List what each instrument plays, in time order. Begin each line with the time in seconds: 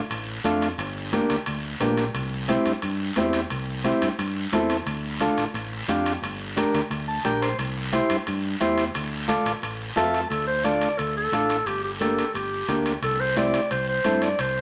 0.10 fingered electric bass A1, high conga, high timbale, long guiro
0.44 fingered electric bass F2, transistor combo organ A3 D4 F4, high conga, high timbale, short guiro
0.61 high timbale, short guiro
0.78 fingered electric bass G1, high conga, high timbale, long guiro
1.12 transistor combo organ A#3 D4 G4, high conga, high timbale, short guiro
1.30 fingered electric bass D2, high timbale, short guiro
1.46 fingered electric bass D2, high conga, high timbale, long guiro
1.80 fingered electric bass A#1, transistor combo organ A#3 D4 G4, high conga, high timbale, low timbale, short guiro
1.97 high timbale, short guiro
2.14 fingered electric bass C2, high conga, high timbale, long guiro
2.48 transistor combo organ C4 E4 G4, high conga, high timbale, short guiro
2.66 fingered electric bass G2, high timbale, short guiro
2.82 fingered electric bass G2, high conga, high timbale, long guiro
3.16 fingered electric bass E2, transistor combo organ C4 E4 G4, high conga, high timbale, low timbale, short guiro
3.33 high timbale, short guiro
3.50 fingered electric bass C2, high conga, high timbale, long guiro
3.84 transistor combo organ C4 E4 G4, high conga, high timbale, short guiro
4.02 fingered electric bass G2, high timbale, short guiro
4.19 fingered electric bass G2, high conga, high timbale, long guiro
4.52 fingered electric bass E2, transistor combo organ C4 E4 A4, high conga, high timbale, low timbale, short guiro
4.70 high timbale, short guiro
4.86 fingered electric bass D2, high conga, high timbale, long guiro
5.20 transistor combo organ D4 F4 A4, high conga, high timbale, short guiro
5.37 fingered electric bass A1, high timbale, short guiro
5.54 fingered electric bass A1, high conga, high timbale, long guiro
5.88 fingered electric bass F2, transistor combo organ D4 F4 G4, high conga, high timbale, short guiro
6.06 high timbale, short guiro
6.22 fingered electric bass G1, high conga, high timbale, long guiro
6.56 transistor combo organ D4 G4 A#4, high conga, high timbale, short guiro
6.74 fingered electric bass D2, high timbale, short guiro
6.90 fingered electric bass D2, high conga, high timbale, long guiro
7.08 transistor combo organ A5
7.25 fingered electric bass A#1, transistor combo organ D4 G4 A#4 G5, high conga, high timbale, short guiro
7.42 transistor combo organ C5, high timbale, short guiro
7.58 fingered electric bass C2, high conga, high timbale, long guiro
7.92 transistor combo organ E4 G4 C5, high conga, high timbale, short guiro
8.10 fingered electric bass G2, high timbale, short guiro
8.27 fingered electric bass G2, high conga, high timbale, long guiro
8.60 fingered electric bass E2, transistor combo organ E4 G4 C5, high conga, high timbale, short guiro
8.78 high timbale, short guiro
8.94 fingered electric bass D2, high conga, high timbale, long guiro
9.28 transistor combo organ F4 A4 D5, high conga, high timbale, short guiro
9.45 fingered electric bass A1, high timbale, short guiro
9.62 fingered electric bass A1, high conga, high timbale, long guiro
9.96 fingered electric bass F2, transistor combo organ F4 A4 E5 A5, high conga, high timbale, low timbale, short guiro
10.14 high timbale, short guiro
10.30 fingered electric bass D2, clarinet A4, high conga, high timbale, long guiro
10.47 clarinet C5
10.64 transistor combo organ D4 F4 A4, clarinet D5, high conga, high timbale, short guiro
10.81 high timbale, short guiro
10.98 fingered electric bass D2, clarinet A4, high conga, high timbale, long guiro
11.17 clarinet A4
11.32 fingered electric bass A1, transistor combo organ D4 F4 A4, high conga, high timbale, short guiro
11.49 high timbale, short guiro
11.66 fingered electric bass G1, clarinet G4, high conga, high timbale, long guiro
11.84 clarinet G4
12.00 transistor combo organ A#3 D4 G4, clarinet A4, high conga, high timbale, short guiro
12.18 high timbale, short guiro
12.34 fingered electric bass G1, clarinet G4, high conga, high timbale, long guiro
12.68 fingered electric bass D2, transistor combo organ A#3 D4 G4, high conga, high timbale, short guiro
12.85 high timbale, short guiro
13.02 fingered electric bass C2, clarinet A4, high conga, high timbale, long guiro
13.21 clarinet C5
13.36 transistor combo organ C4 E4 G4, clarinet D5, high conga, high timbale, short guiro
13.54 high timbale, short guiro
13.71 fingered electric bass C2, clarinet C5, high conga, high timbale, long guiro
13.89 clarinet C5
14.04 fingered electric bass G2, transistor combo organ C4 E4 A4, high conga, high timbale, short guiro
14.22 clarinet D5, high timbale, short guiro
14.39 fingered electric bass C2, clarinet C5, high conga, high timbale, long guiro